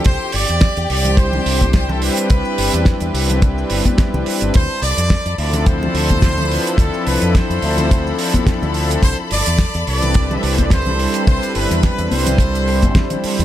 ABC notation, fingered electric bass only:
X:1
M:4/4
L:1/16
Q:"Swing 16ths" 1/4=107
K:C
V:1 name="Fingered electric bass" clef=bass
C,, z G,,, E,, z E,, C,,3 z C,,4 z2 | C,, z G,,, E,, z E,, C,,3 z G,,, z2 C,, z G,,, | D,, z C,, F,, z F,, D,,3 z D,,4 z2 | D,, z C,, F,, z F,, D,,3 z4 D,,2 z |
C,, z G,,, E,, z E,, C,,3 z C,,4 z2 | C,, z G,,, E,, z E,, C,,4- C,, G,,, z3 E,, |]